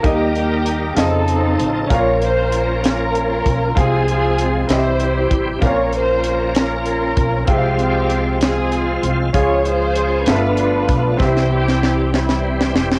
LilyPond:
<<
  \new Staff \with { instrumentName = "Grand piano" } { \time 6/8 \key f \minor \tempo 4. = 65 <bes ees' g' ees''>4. <des f' a' ees''>4. | <des' f' bes' f''>2. | <c' f' aes' f''>4. <c' e' g' ees'' e''>4. | <c' des' f' bes' f''>2. |
<aes c' f' e'' f''>2. | <des' f' aes' f''>4. <b f' a' e''>4. | <c' e' g' e''>2. | }
  \new Staff \with { instrumentName = "Grand piano" } { \clef bass \time 6/8 \key f \minor ees4. r4. | bes,4. r4. | c4. c4. | bes,4. r4. |
c4. r4. | des4. g,4. | c4. r4. | }
  \new Staff \with { instrumentName = "String section" } { \time 6/8 \key f \minor << { g'8 g'4 a'4 r8 | des''8 c''4 bes'4. | aes'8 aes'4 c''4 r8 | des''8 c''4 bes'4. |
g'8 g'4 aes'4 r8 | des''8 c''4 b'4. | c''8 g'4 e'4 r8 | } \\ { <bes ees'>8 <bes ees'>4 <c' ees'>4. | <f' bes'>8 f'4 <des' f'>4. | <c' f'>8 <c' f'>4 <e' g'>4. | <f' bes'>8 f'4 <des' f'>4. |
c'8 c'4 <c' f'>4. | <f' aes'>8 <f' aes'>4 <d' f'>4. | <e' g'>8 <c' e'>4 <g c'>4. | } >> }
  \new Staff \with { instrumentName = "Tonewheel organ" } { \time 6/8 \key f \minor <g bes ees' aes' bes'>4. <des f ees' a'>4. | <f bes des' bes'>2. | <f aes c' g' aes'>4. <e g c' g'>4. | <f bes c' des' bes'>2. |
<f aes c' f' g'>2. | <f aes des' aes'>4. <f a bes b f'>4. | <e g c' g'>2. | }
  \new Staff \with { instrumentName = "Upright bass" } { \clef bass \time 6/8 \key f \minor ees,4. f,4 a,,8 | bes,,2~ bes,,8 b,,8 | c,4. c,4 a,,8 | bes,,2~ bes,,8 b,,8 |
c,2~ c,8 c,8 | des,4. g,,4 b,,8 | c,2~ c,8 e,,8 | }
  \new DrumStaff \with { instrumentName = "Drums" } \drummode { \time 6/8 <hh bd>8 hh8 hh8 <hh sn>8 hh8 hh8 | <hh bd>8 hh8 hh8 <hh sn>8 hh8 <hh bd>8 | <hh bd>8 hh8 hh8 <hh sn>8 hh8 <hh bd>8 | <hh bd>8 hh8 hh8 <hh sn>8 hh8 <hh bd>8 |
<hh bd>8 hh8 hh8 <hh sn>8 hh8 hh8 | <hh bd>8 hh8 hh8 <hh sn>8 hh8 <hh bd>8 | <bd sn>16 sn8 sn16 sn8 sn16 sn8 sn16 sn16 sn16 | }
>>